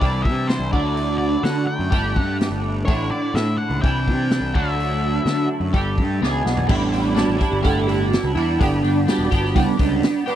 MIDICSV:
0, 0, Header, 1, 6, 480
1, 0, Start_track
1, 0, Tempo, 477707
1, 967, Time_signature, 4, 2, 24, 8
1, 10403, End_track
2, 0, Start_track
2, 0, Title_t, "Lead electric guitar"
2, 0, Program_c, 0, 29
2, 0, Note_on_c, 0, 74, 95
2, 221, Note_on_c, 0, 76, 79
2, 246, Note_off_c, 0, 74, 0
2, 476, Note_on_c, 0, 72, 71
2, 482, Note_off_c, 0, 76, 0
2, 705, Note_off_c, 0, 72, 0
2, 730, Note_on_c, 0, 74, 76
2, 1176, Note_off_c, 0, 74, 0
2, 1188, Note_on_c, 0, 74, 84
2, 1440, Note_on_c, 0, 78, 84
2, 1445, Note_off_c, 0, 74, 0
2, 1675, Note_off_c, 0, 78, 0
2, 1679, Note_on_c, 0, 79, 84
2, 2161, Note_off_c, 0, 79, 0
2, 2161, Note_on_c, 0, 78, 84
2, 2363, Note_off_c, 0, 78, 0
2, 2867, Note_on_c, 0, 73, 83
2, 3123, Note_off_c, 0, 73, 0
2, 3127, Note_on_c, 0, 74, 85
2, 3365, Note_on_c, 0, 76, 82
2, 3375, Note_off_c, 0, 74, 0
2, 3592, Note_off_c, 0, 76, 0
2, 3596, Note_on_c, 0, 78, 105
2, 3834, Note_off_c, 0, 78, 0
2, 3838, Note_on_c, 0, 79, 107
2, 4573, Note_off_c, 0, 79, 0
2, 4577, Note_on_c, 0, 76, 80
2, 5495, Note_off_c, 0, 76, 0
2, 10403, End_track
3, 0, Start_track
3, 0, Title_t, "Tonewheel organ"
3, 0, Program_c, 1, 16
3, 6710, Note_on_c, 1, 55, 46
3, 6714, Note_on_c, 1, 59, 43
3, 6728, Note_on_c, 1, 62, 56
3, 7210, Note_on_c, 1, 66, 89
3, 7405, Note_off_c, 1, 55, 0
3, 7407, Note_off_c, 1, 59, 0
3, 7414, Note_off_c, 1, 62, 0
3, 7451, Note_on_c, 1, 67, 86
3, 7459, Note_off_c, 1, 66, 0
3, 7671, Note_on_c, 1, 69, 104
3, 7699, Note_off_c, 1, 67, 0
3, 7908, Note_on_c, 1, 67, 99
3, 7930, Note_off_c, 1, 69, 0
3, 8136, Note_on_c, 1, 66, 88
3, 8143, Note_off_c, 1, 67, 0
3, 8376, Note_off_c, 1, 66, 0
3, 8382, Note_on_c, 1, 64, 83
3, 8638, Note_on_c, 1, 55, 49
3, 8642, Note_on_c, 1, 59, 47
3, 8658, Note_on_c, 1, 62, 53
3, 8842, Note_off_c, 1, 64, 0
3, 9141, Note_on_c, 1, 66, 72
3, 9328, Note_off_c, 1, 55, 0
3, 9330, Note_off_c, 1, 59, 0
3, 9339, Note_off_c, 1, 62, 0
3, 9590, Note_on_c, 1, 62, 50
3, 9596, Note_on_c, 1, 55, 47
3, 9596, Note_on_c, 1, 59, 45
3, 9604, Note_on_c, 1, 64, 88
3, 9630, Note_off_c, 1, 66, 0
3, 9714, Note_off_c, 1, 64, 0
3, 9815, Note_off_c, 1, 62, 0
3, 9819, Note_off_c, 1, 55, 0
3, 9819, Note_off_c, 1, 59, 0
3, 9839, Note_on_c, 1, 62, 87
3, 10290, Note_off_c, 1, 62, 0
3, 10321, Note_on_c, 1, 71, 108
3, 10403, Note_off_c, 1, 71, 0
3, 10403, End_track
4, 0, Start_track
4, 0, Title_t, "Clean electric guitar"
4, 0, Program_c, 2, 27
4, 1, Note_on_c, 2, 48, 82
4, 8, Note_on_c, 2, 52, 89
4, 15, Note_on_c, 2, 55, 94
4, 24, Note_on_c, 2, 62, 88
4, 37, Note_on_c, 2, 64, 89
4, 710, Note_off_c, 2, 48, 0
4, 713, Note_off_c, 2, 52, 0
4, 717, Note_off_c, 2, 55, 0
4, 718, Note_on_c, 2, 50, 86
4, 728, Note_off_c, 2, 64, 0
4, 735, Note_on_c, 2, 54, 95
4, 739, Note_on_c, 2, 57, 86
4, 742, Note_off_c, 2, 62, 0
4, 746, Note_on_c, 2, 62, 90
4, 755, Note_on_c, 2, 64, 88
4, 1909, Note_off_c, 2, 50, 0
4, 1909, Note_off_c, 2, 54, 0
4, 1913, Note_on_c, 2, 55, 81
4, 1917, Note_off_c, 2, 57, 0
4, 1927, Note_off_c, 2, 64, 0
4, 1929, Note_on_c, 2, 57, 87
4, 1937, Note_off_c, 2, 62, 0
4, 1941, Note_on_c, 2, 62, 88
4, 1948, Note_on_c, 2, 67, 93
4, 2867, Note_off_c, 2, 55, 0
4, 2875, Note_off_c, 2, 57, 0
4, 2880, Note_on_c, 2, 45, 81
4, 2884, Note_off_c, 2, 67, 0
4, 2890, Note_on_c, 2, 50, 94
4, 2892, Note_on_c, 2, 57, 93
4, 2900, Note_off_c, 2, 62, 0
4, 2904, Note_on_c, 2, 62, 101
4, 2914, Note_on_c, 2, 64, 96
4, 3831, Note_off_c, 2, 45, 0
4, 3835, Note_on_c, 2, 48, 80
4, 3836, Note_off_c, 2, 50, 0
4, 3837, Note_off_c, 2, 57, 0
4, 3848, Note_off_c, 2, 64, 0
4, 3854, Note_on_c, 2, 52, 88
4, 3862, Note_on_c, 2, 55, 85
4, 3866, Note_off_c, 2, 62, 0
4, 3872, Note_on_c, 2, 62, 95
4, 3873, Note_on_c, 2, 64, 103
4, 4549, Note_off_c, 2, 48, 0
4, 4555, Note_off_c, 2, 52, 0
4, 4556, Note_on_c, 2, 50, 72
4, 4559, Note_on_c, 2, 54, 93
4, 4562, Note_off_c, 2, 55, 0
4, 4566, Note_on_c, 2, 57, 95
4, 4568, Note_off_c, 2, 64, 0
4, 4575, Note_off_c, 2, 62, 0
4, 4579, Note_on_c, 2, 62, 99
4, 4585, Note_on_c, 2, 64, 92
4, 5750, Note_off_c, 2, 50, 0
4, 5752, Note_off_c, 2, 54, 0
4, 5755, Note_off_c, 2, 57, 0
4, 5758, Note_on_c, 2, 55, 84
4, 5762, Note_off_c, 2, 62, 0
4, 5765, Note_off_c, 2, 64, 0
4, 5769, Note_on_c, 2, 57, 92
4, 5784, Note_on_c, 2, 62, 82
4, 5789, Note_on_c, 2, 67, 97
4, 6231, Note_off_c, 2, 55, 0
4, 6237, Note_off_c, 2, 57, 0
4, 6238, Note_on_c, 2, 40, 84
4, 6244, Note_off_c, 2, 62, 0
4, 6247, Note_off_c, 2, 67, 0
4, 6247, Note_on_c, 2, 47, 88
4, 6253, Note_on_c, 2, 52, 82
4, 6254, Note_on_c, 2, 59, 93
4, 6260, Note_on_c, 2, 62, 101
4, 6273, Note_on_c, 2, 68, 101
4, 6698, Note_off_c, 2, 47, 0
4, 6702, Note_on_c, 2, 45, 96
4, 6703, Note_off_c, 2, 52, 0
4, 6707, Note_on_c, 2, 50, 86
4, 6708, Note_off_c, 2, 62, 0
4, 6711, Note_off_c, 2, 40, 0
4, 6714, Note_off_c, 2, 59, 0
4, 6718, Note_on_c, 2, 55, 82
4, 6720, Note_on_c, 2, 62, 102
4, 6724, Note_off_c, 2, 68, 0
4, 6728, Note_on_c, 2, 64, 109
4, 6926, Note_off_c, 2, 64, 0
4, 6938, Note_on_c, 2, 64, 69
4, 6948, Note_off_c, 2, 62, 0
4, 6953, Note_on_c, 2, 62, 63
4, 6965, Note_off_c, 2, 55, 0
4, 6969, Note_on_c, 2, 55, 61
4, 7165, Note_off_c, 2, 50, 0
4, 7177, Note_on_c, 2, 50, 79
4, 7178, Note_off_c, 2, 55, 0
4, 7182, Note_on_c, 2, 55, 89
4, 7193, Note_off_c, 2, 64, 0
4, 7194, Note_off_c, 2, 62, 0
4, 7198, Note_off_c, 2, 45, 0
4, 7198, Note_on_c, 2, 62, 86
4, 7206, Note_on_c, 2, 64, 80
4, 7404, Note_off_c, 2, 64, 0
4, 7416, Note_on_c, 2, 64, 77
4, 7436, Note_off_c, 2, 62, 0
4, 7440, Note_on_c, 2, 62, 69
4, 7446, Note_off_c, 2, 55, 0
4, 7450, Note_on_c, 2, 55, 58
4, 7651, Note_off_c, 2, 50, 0
4, 7652, Note_off_c, 2, 55, 0
4, 7653, Note_on_c, 2, 45, 90
4, 7663, Note_on_c, 2, 50, 92
4, 7664, Note_on_c, 2, 55, 98
4, 7669, Note_off_c, 2, 64, 0
4, 7670, Note_off_c, 2, 62, 0
4, 7674, Note_on_c, 2, 62, 89
4, 7681, Note_on_c, 2, 64, 97
4, 7892, Note_off_c, 2, 64, 0
4, 7904, Note_on_c, 2, 64, 74
4, 7918, Note_off_c, 2, 62, 0
4, 7922, Note_off_c, 2, 55, 0
4, 7922, Note_on_c, 2, 62, 68
4, 7934, Note_on_c, 2, 55, 59
4, 8153, Note_off_c, 2, 45, 0
4, 8158, Note_off_c, 2, 50, 0
4, 8380, Note_off_c, 2, 64, 0
4, 8392, Note_on_c, 2, 64, 74
4, 8404, Note_off_c, 2, 62, 0
4, 8408, Note_on_c, 2, 62, 71
4, 8411, Note_off_c, 2, 55, 0
4, 8423, Note_on_c, 2, 55, 66
4, 8628, Note_off_c, 2, 55, 0
4, 8628, Note_off_c, 2, 64, 0
4, 8628, Note_on_c, 2, 43, 102
4, 8633, Note_on_c, 2, 50, 99
4, 8640, Note_off_c, 2, 62, 0
4, 8640, Note_on_c, 2, 55, 102
4, 8644, Note_on_c, 2, 62, 98
4, 8649, Note_on_c, 2, 59, 104
4, 8660, Note_on_c, 2, 67, 99
4, 8853, Note_off_c, 2, 67, 0
4, 8866, Note_on_c, 2, 67, 70
4, 8873, Note_off_c, 2, 62, 0
4, 8877, Note_on_c, 2, 62, 71
4, 8886, Note_off_c, 2, 59, 0
4, 8887, Note_off_c, 2, 55, 0
4, 8890, Note_on_c, 2, 59, 59
4, 8899, Note_on_c, 2, 55, 53
4, 9098, Note_off_c, 2, 55, 0
4, 9110, Note_on_c, 2, 55, 76
4, 9118, Note_off_c, 2, 59, 0
4, 9120, Note_off_c, 2, 43, 0
4, 9122, Note_off_c, 2, 50, 0
4, 9122, Note_on_c, 2, 59, 77
4, 9131, Note_off_c, 2, 67, 0
4, 9133, Note_off_c, 2, 62, 0
4, 9137, Note_on_c, 2, 62, 76
4, 9143, Note_on_c, 2, 67, 88
4, 9342, Note_off_c, 2, 67, 0
4, 9345, Note_off_c, 2, 62, 0
4, 9354, Note_on_c, 2, 67, 82
4, 9357, Note_on_c, 2, 62, 71
4, 9365, Note_off_c, 2, 59, 0
4, 9369, Note_on_c, 2, 59, 66
4, 9370, Note_off_c, 2, 55, 0
4, 9382, Note_on_c, 2, 55, 62
4, 9589, Note_off_c, 2, 55, 0
4, 9596, Note_on_c, 2, 43, 95
4, 9599, Note_on_c, 2, 50, 90
4, 9601, Note_on_c, 2, 55, 99
4, 9602, Note_off_c, 2, 59, 0
4, 9602, Note_off_c, 2, 62, 0
4, 9606, Note_off_c, 2, 67, 0
4, 9606, Note_on_c, 2, 59, 102
4, 9614, Note_on_c, 2, 62, 108
4, 9618, Note_on_c, 2, 67, 100
4, 9808, Note_off_c, 2, 67, 0
4, 9820, Note_on_c, 2, 67, 66
4, 9829, Note_off_c, 2, 62, 0
4, 9840, Note_off_c, 2, 55, 0
4, 9841, Note_off_c, 2, 59, 0
4, 9841, Note_on_c, 2, 62, 59
4, 9845, Note_on_c, 2, 59, 70
4, 9852, Note_on_c, 2, 55, 60
4, 10083, Note_off_c, 2, 43, 0
4, 10084, Note_off_c, 2, 50, 0
4, 10297, Note_off_c, 2, 67, 0
4, 10307, Note_off_c, 2, 62, 0
4, 10309, Note_on_c, 2, 67, 73
4, 10319, Note_on_c, 2, 62, 70
4, 10323, Note_off_c, 2, 59, 0
4, 10327, Note_off_c, 2, 55, 0
4, 10327, Note_on_c, 2, 59, 68
4, 10339, Note_on_c, 2, 55, 61
4, 10403, Note_off_c, 2, 55, 0
4, 10403, Note_off_c, 2, 59, 0
4, 10403, Note_off_c, 2, 62, 0
4, 10403, Note_off_c, 2, 67, 0
4, 10403, End_track
5, 0, Start_track
5, 0, Title_t, "Picked electric bass"
5, 0, Program_c, 3, 34
5, 12, Note_on_c, 3, 36, 90
5, 251, Note_on_c, 3, 48, 75
5, 266, Note_off_c, 3, 36, 0
5, 566, Note_off_c, 3, 48, 0
5, 596, Note_on_c, 3, 36, 81
5, 706, Note_off_c, 3, 36, 0
5, 735, Note_on_c, 3, 38, 94
5, 1365, Note_off_c, 3, 38, 0
5, 1440, Note_on_c, 3, 50, 78
5, 1654, Note_off_c, 3, 50, 0
5, 1801, Note_on_c, 3, 42, 87
5, 1909, Note_off_c, 3, 42, 0
5, 1931, Note_on_c, 3, 31, 88
5, 2166, Note_on_c, 3, 43, 75
5, 2181, Note_off_c, 3, 31, 0
5, 2484, Note_off_c, 3, 43, 0
5, 2515, Note_on_c, 3, 31, 78
5, 2838, Note_off_c, 3, 31, 0
5, 2897, Note_on_c, 3, 33, 85
5, 3105, Note_off_c, 3, 33, 0
5, 3356, Note_on_c, 3, 45, 91
5, 3573, Note_off_c, 3, 45, 0
5, 3716, Note_on_c, 3, 37, 87
5, 3827, Note_off_c, 3, 37, 0
5, 3851, Note_on_c, 3, 36, 94
5, 4092, Note_on_c, 3, 48, 78
5, 4107, Note_off_c, 3, 36, 0
5, 4408, Note_off_c, 3, 48, 0
5, 4427, Note_on_c, 3, 36, 76
5, 4543, Note_off_c, 3, 36, 0
5, 4571, Note_on_c, 3, 38, 86
5, 5205, Note_off_c, 3, 38, 0
5, 5279, Note_on_c, 3, 50, 82
5, 5496, Note_off_c, 3, 50, 0
5, 5628, Note_on_c, 3, 42, 89
5, 5744, Note_off_c, 3, 42, 0
5, 5766, Note_on_c, 3, 31, 97
5, 6005, Note_on_c, 3, 43, 82
5, 6020, Note_off_c, 3, 31, 0
5, 6219, Note_off_c, 3, 43, 0
5, 6246, Note_on_c, 3, 37, 69
5, 6465, Note_off_c, 3, 37, 0
5, 6479, Note_on_c, 3, 35, 77
5, 6701, Note_off_c, 3, 35, 0
5, 6725, Note_on_c, 3, 33, 98
5, 7256, Note_off_c, 3, 33, 0
5, 7319, Note_on_c, 3, 33, 63
5, 7431, Note_off_c, 3, 33, 0
5, 7550, Note_on_c, 3, 31, 88
5, 8193, Note_off_c, 3, 31, 0
5, 8275, Note_on_c, 3, 37, 79
5, 8388, Note_off_c, 3, 37, 0
5, 8396, Note_on_c, 3, 40, 100
5, 8614, Note_off_c, 3, 40, 0
5, 8647, Note_on_c, 3, 31, 103
5, 8860, Note_off_c, 3, 31, 0
5, 8883, Note_on_c, 3, 31, 77
5, 9098, Note_off_c, 3, 31, 0
5, 9229, Note_on_c, 3, 28, 77
5, 9344, Note_off_c, 3, 28, 0
5, 9360, Note_on_c, 3, 31, 89
5, 9576, Note_off_c, 3, 31, 0
5, 9603, Note_on_c, 3, 37, 88
5, 9712, Note_off_c, 3, 37, 0
5, 9840, Note_on_c, 3, 37, 78
5, 10056, Note_off_c, 3, 37, 0
5, 10403, End_track
6, 0, Start_track
6, 0, Title_t, "Drums"
6, 15, Note_on_c, 9, 36, 88
6, 23, Note_on_c, 9, 46, 38
6, 116, Note_off_c, 9, 36, 0
6, 123, Note_off_c, 9, 46, 0
6, 254, Note_on_c, 9, 36, 79
6, 354, Note_off_c, 9, 36, 0
6, 493, Note_on_c, 9, 46, 42
6, 500, Note_on_c, 9, 38, 106
6, 594, Note_off_c, 9, 46, 0
6, 601, Note_off_c, 9, 38, 0
6, 733, Note_on_c, 9, 36, 82
6, 833, Note_off_c, 9, 36, 0
6, 974, Note_on_c, 9, 46, 47
6, 1074, Note_off_c, 9, 46, 0
6, 1452, Note_on_c, 9, 46, 45
6, 1459, Note_on_c, 9, 38, 82
6, 1553, Note_off_c, 9, 46, 0
6, 1560, Note_off_c, 9, 38, 0
6, 1927, Note_on_c, 9, 46, 47
6, 1931, Note_on_c, 9, 36, 93
6, 2027, Note_off_c, 9, 46, 0
6, 2032, Note_off_c, 9, 36, 0
6, 2173, Note_on_c, 9, 36, 79
6, 2273, Note_off_c, 9, 36, 0
6, 2418, Note_on_c, 9, 46, 51
6, 2425, Note_on_c, 9, 38, 90
6, 2518, Note_off_c, 9, 46, 0
6, 2525, Note_off_c, 9, 38, 0
6, 2891, Note_on_c, 9, 46, 52
6, 2894, Note_on_c, 9, 36, 114
6, 2992, Note_off_c, 9, 46, 0
6, 2995, Note_off_c, 9, 36, 0
6, 3373, Note_on_c, 9, 46, 42
6, 3380, Note_on_c, 9, 38, 98
6, 3474, Note_off_c, 9, 46, 0
6, 3481, Note_off_c, 9, 38, 0
6, 3855, Note_on_c, 9, 36, 102
6, 3858, Note_on_c, 9, 46, 39
6, 3956, Note_off_c, 9, 36, 0
6, 3958, Note_off_c, 9, 46, 0
6, 4095, Note_on_c, 9, 36, 78
6, 4195, Note_off_c, 9, 36, 0
6, 4326, Note_on_c, 9, 46, 46
6, 4334, Note_on_c, 9, 38, 106
6, 4427, Note_off_c, 9, 46, 0
6, 4434, Note_off_c, 9, 38, 0
6, 4572, Note_on_c, 9, 36, 87
6, 4673, Note_off_c, 9, 36, 0
6, 4821, Note_on_c, 9, 46, 49
6, 4922, Note_off_c, 9, 46, 0
6, 5289, Note_on_c, 9, 46, 41
6, 5296, Note_on_c, 9, 38, 84
6, 5389, Note_off_c, 9, 46, 0
6, 5396, Note_off_c, 9, 38, 0
6, 5764, Note_on_c, 9, 46, 39
6, 5767, Note_on_c, 9, 36, 95
6, 5864, Note_off_c, 9, 46, 0
6, 5867, Note_off_c, 9, 36, 0
6, 6007, Note_on_c, 9, 36, 76
6, 6107, Note_off_c, 9, 36, 0
6, 6265, Note_on_c, 9, 38, 54
6, 6365, Note_off_c, 9, 38, 0
6, 6495, Note_on_c, 9, 38, 73
6, 6596, Note_off_c, 9, 38, 0
6, 6600, Note_on_c, 9, 43, 79
6, 6701, Note_off_c, 9, 43, 0
6, 6724, Note_on_c, 9, 49, 103
6, 6727, Note_on_c, 9, 36, 105
6, 6824, Note_off_c, 9, 49, 0
6, 6828, Note_off_c, 9, 36, 0
6, 6967, Note_on_c, 9, 46, 61
6, 7068, Note_off_c, 9, 46, 0
6, 7202, Note_on_c, 9, 46, 63
6, 7209, Note_on_c, 9, 38, 94
6, 7302, Note_off_c, 9, 46, 0
6, 7309, Note_off_c, 9, 38, 0
6, 7439, Note_on_c, 9, 46, 48
6, 7445, Note_on_c, 9, 36, 77
6, 7539, Note_off_c, 9, 46, 0
6, 7545, Note_off_c, 9, 36, 0
6, 7680, Note_on_c, 9, 46, 61
6, 7686, Note_on_c, 9, 36, 85
6, 7780, Note_off_c, 9, 46, 0
6, 7786, Note_off_c, 9, 36, 0
6, 7927, Note_on_c, 9, 46, 60
6, 8027, Note_off_c, 9, 46, 0
6, 8170, Note_on_c, 9, 46, 66
6, 8177, Note_on_c, 9, 38, 102
6, 8271, Note_off_c, 9, 46, 0
6, 8278, Note_off_c, 9, 38, 0
6, 8415, Note_on_c, 9, 46, 52
6, 8515, Note_off_c, 9, 46, 0
6, 8649, Note_on_c, 9, 36, 106
6, 8651, Note_on_c, 9, 46, 76
6, 8749, Note_off_c, 9, 36, 0
6, 8752, Note_off_c, 9, 46, 0
6, 8886, Note_on_c, 9, 46, 62
6, 8986, Note_off_c, 9, 46, 0
6, 9122, Note_on_c, 9, 46, 68
6, 9129, Note_on_c, 9, 38, 90
6, 9223, Note_off_c, 9, 46, 0
6, 9230, Note_off_c, 9, 38, 0
6, 9363, Note_on_c, 9, 46, 59
6, 9365, Note_on_c, 9, 36, 82
6, 9464, Note_off_c, 9, 46, 0
6, 9465, Note_off_c, 9, 36, 0
6, 9496, Note_on_c, 9, 38, 32
6, 9596, Note_off_c, 9, 38, 0
6, 9602, Note_on_c, 9, 46, 73
6, 9604, Note_on_c, 9, 36, 100
6, 9703, Note_off_c, 9, 46, 0
6, 9705, Note_off_c, 9, 36, 0
6, 9836, Note_on_c, 9, 46, 66
6, 9841, Note_on_c, 9, 36, 90
6, 9937, Note_off_c, 9, 46, 0
6, 9941, Note_off_c, 9, 36, 0
6, 10078, Note_on_c, 9, 46, 76
6, 10085, Note_on_c, 9, 38, 102
6, 10179, Note_off_c, 9, 46, 0
6, 10186, Note_off_c, 9, 38, 0
6, 10324, Note_on_c, 9, 46, 54
6, 10403, Note_off_c, 9, 46, 0
6, 10403, End_track
0, 0, End_of_file